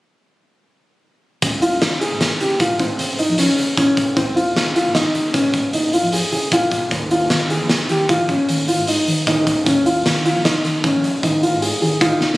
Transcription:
1.42 C#2, kick, closed hi-hat
1.62 F4, closed hi-hat
1.81 C#3, snare, closed hi-hat
2.01 G#4, closed hi-hat
2.12 G#1
2.21 snare, closed hi-hat
2.40 C#3 G4, closed hi-hat
2.60 F4, kick, closed hi-hat
2.71 G#1
2.79 C4, kick, closed hi-hat
2.99 C#3, closed hi-hat
3.19 D#4, closed hi-hat
3.29 F2
3.38 C#4, snare, closed hi-hat
3.58 C#3, closed hi-hat
3.77 C#4, kick, closed hi-hat
3.88 C2
3.97 kick, closed hi-hat
4.16 C#2 C4, kick, closed hi-hat
4.36 F4, closed hi-hat
4.56 C#3, snare, closed hi-hat
4.76 F4, closed hi-hat
4.86 G#1
4.95 D#4, snare, closed hi-hat
5.15 C#3, closed hi-hat
5.33 C#4, kick, snare, closed hi-hat
5.44 G#1
5.54 kick, closed hi-hat
5.73 C#3 D#4, closed hi-hat
5.93 F4, closed hi-hat
6.03 F2
6.12 G#4, closed hi-hat
6.32 C#3 G#4, closed hi-hat
6.52 F4, kick, closed hi-hat
6.62 C2
6.71 kick, closed hi-hat
6.91 D#2, kick, closed hi-hat
7.11 F4, closed hi-hat
7.30 D#3, snare, closed hi-hat
7.50 G#4, closed hi-hat
7.60 A#1
7.70 snare, closed hi-hat
7.89 D#3 G4, snare, closed hi-hat
8.09 F4, kick, closed hi-hat
8.19 A#1
8.29 C#4, kick, closed hi-hat
8.49 D#3, closed hi-hat
8.68 F4, closed hi-hat
8.78 G#2
8.87 D#4, closed hi-hat
9.07 D#3, closed hi-hat
9.27 D#4, kick, snare, closed hi-hat
9.37 C#2
9.47 kick, closed hi-hat
9.66 D#2 C#4, kick, closed hi-hat
9.86 F4, closed hi-hat
10.06 D#3, snare, closed hi-hat
10.25 F4, closed hi-hat
10.36 A#1
10.45 D#4, snare, closed hi-hat
10.64 D#3, snare, closed hi-hat
10.84 C#4, kick, closed hi-hat
10.94 A#1
11.04 closed hi-hat
11.23 D#3 D#4, kick, closed hi-hat
11.42 F4, closed hi-hat
11.53 G#2
11.62 G#4, closed hi-hat
11.82 D#3 G#4, closed hi-hat
12.01 D#4 F4, kick, closed hi-hat
12.12 C#2
12.21 snare
12.34 snare

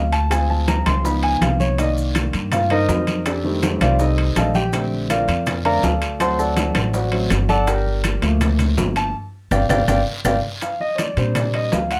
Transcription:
Already playing: D2 A3 A#3 F4 F5
0.12 A5, high timbale, short guiro, maracas
0.30 G#3 C4 F4 G#5, high bongo, high conga, high timbale, long guiro, claves, maracas
0.50 A5, high bongo, high conga
0.68 A#5, high bongo, high conga, high timbale, short guiro, maracas
0.86 C#2 C6, high conga, high timbale, short guiro, claves, maracas
1.04 F3 B3 D#4 B5, high bongo, high conga, long guiro, maracas
1.23 G#5, high bongo, high conga, high timbale
1.41 C2 F5, high bongo, low bongo, high conga, high timbale, short guiro, claves, maracas
1.60 C#5, high bongo, high conga, short guiro, maracas
1.78 D#3 A#3 D5 D#5, high bongo, high conga, high timbale, long guiro, maracas
1.97 high conga, maracas
2.15 high bongo, high conga, high timbale, short guiro, claves, maracas
2.33 G2, high conga, high timbale, short guiro, maracas
2.52 F4 F5, high bongo, high conga, low conga, high timbale, long guiro, claves, maracas
2.70 D#4 A#4 C5 D#5, high conga, high timbale
2.88 F2, high bongo, low bongo, high conga, low timbale, short guiro, maracas
3.07 high conga, high timbale, short guiro, maracas
3.26 D4 G4 A4 D5, high bongo, high conga, high timbale, long guiro, claves, maracas
3.44 D#3 G3 A3 C4, high bongo, high conga
3.63 high bongo, high conga, high timbale, short guiro, maracas
3.81 C2 F4 C5 D5 F5, high conga, high timbale, short guiro, claves, maracas
3.99 D#4 A4 C5 D#5, high bongo, high conga, long guiro, maracas
4.18 high bongo, high conga, high timbale
4.36 A#1 D#3 G3 A3 D4 A4 D#5 F5 A5, high bongo, low bongo, high conga, high timbale, short guiro, claves, maracas
4.54 G4 G5, high conga, short guiro, maracas
4.72 D3 A3 C4, high bongo, high conga, high timbale, long guiro, maracas
4.92 high conga
5.10 F4 A#4 D5 F5, high bongo, high conga, high timbale, short guiro, claves, maracas
5.28 F2, high conga, high timbale, short guiro, maracas
5.46 high bongo, high conga, low conga, high timbale, long guiro, claves, maracas
5.65 D3 A3 C4 A#4 D5 F5 A#5, high conga, high timbale
5.83 D2 A4 D5 F5 A5, high bongo, low bongo, high conga, low timbale, short guiro, maracas
6.02 high timbale, short guiro, maracas
6.20 F#3 A3 C4 C5 F#5 A5 C6, high bongo, high conga, high timbale, long guiro, claves, maracas
6.38 A4 D5 F#5 A5, high bongo, high conga, maracas
6.56 high bongo, high conga, high timbale, short guiro, maracas
6.75 A1, high conga, high timbale, short guiro, claves, maracas
6.94 F#4 C5 D5 F#5, high bongo, high conga, long guiro, maracas
7.12 F#3 A3 C4, high bongo, high conga, high timbale
7.30 G1, high bongo, low bongo, high conga, high timbale, short guiro, claves, maracas
7.49 A4 D5 F#5 A5, high bongo, high conga, short guiro, maracas
7.67 G4 A#4 D5 G5, high bongo, high conga, high timbale, long guiro, maracas
7.86 high conga
8.04 high bongo, high conga, high timbale, short guiro, claves, maracas
8.22 D2 F3 A3 A#3, high conga, high timbale, short guiro, maracas
8.41 high bongo, high conga, low conga, high timbale, long guiro, claves, maracas
8.59 high conga, low conga, high timbale, maracas
8.77 G1, high bongo, low bongo, high conga, low timbale, short guiro, maracas
8.96 A5, high timbale, short guiro, maracas
9.51 G1 D5 F5 G5, low bongo, low conga, high timbale, long guiro, claves, maracas
9.69 G1 D5 F5 G5, low bongo, low conga, high timbale, long guiro, claves, maracas
9.88 G1 D5 F5 G5, low bongo, low conga, high timbale, long guiro, claves, maracas
10.25 G1 D5 F5 G5, low bongo, low conga, high timbale, claves, maracas
10.62 F5, high bongo, high conga, high timbale, long guiro, maracas
10.80 D#5, high conga
10.95 C#5, high bongo, high conga, high timbale, short guiro, claves, maracas
11.00 D5
11.17 A#2 G3 C4 D4 C5, high conga, high timbale, short guiro, maracas
11.35 D5, high bongo, high conga, low conga, high timbale, long guiro, claves, maracas
11.54 D#5, high conga, high timbale
11.72 D2 F5, high bongo, low bongo, high conga, low timbale, short guiro, maracas
11.91 F#5, high timbale, short guiro, maracas

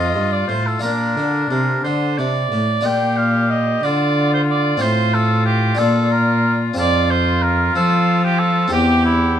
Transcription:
Already playing: F2 C4 F4 A4 D#5
0.15 G2
0.32 D5
0.48 A2 C5
0.67 A4
0.79 A#2 D4 F4 A#4
0.84 A#2 D4
1.16 D3
1.49 C3 A#4
1.84 D3 C5
2.18 C3 D5
2.52 A2
2.81 D4 F4
2.85 A#2 G4 G5
3.18 F5
3.50 D#5
3.83 D3 F4 D5
4.33 C5
4.50 D5
4.77 C4 F4 C5
4.82 A2 F4
5.14 A4
5.45 G4
5.75 D4 F4 A4
5.79 A#2 F4
6.11 A#4
6.74 F2 C4 F4 A4
6.78 F2 F4 D5
7.11 C5
7.42 A#4
7.76 F3 A4
8.24 G4
8.38 A4
8.68 C4 G4
8.72 E2 G4
9.05 E4

